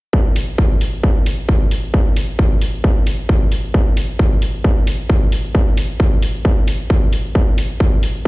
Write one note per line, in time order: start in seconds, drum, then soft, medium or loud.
0.13 kick loud
0.36 open hi-hat loud
0.58 kick loud
0.81 open hi-hat loud
1.03 kick loud
1.26 open hi-hat loud
1.49 kick loud
1.71 open hi-hat loud
1.94 kick loud
2.16 open hi-hat loud
2.39 kick loud
2.61 open hi-hat loud
2.84 kick loud
3.07 open hi-hat loud
3.29 kick loud
3.52 open hi-hat loud
3.74 kick loud
3.97 open hi-hat loud
4.19 kick loud
4.42 open hi-hat loud
4.64 kick loud
4.87 open hi-hat loud
5.10 kick loud
5.32 open hi-hat loud
5.55 kick loud
5.77 open hi-hat loud
6.00 kick loud
6.22 open hi-hat loud
6.45 kick loud
6.67 open hi-hat loud
6.90 kick loud
7.13 open hi-hat loud
7.35 kick loud
7.58 open hi-hat loud
7.80 kick loud
8.03 open hi-hat loud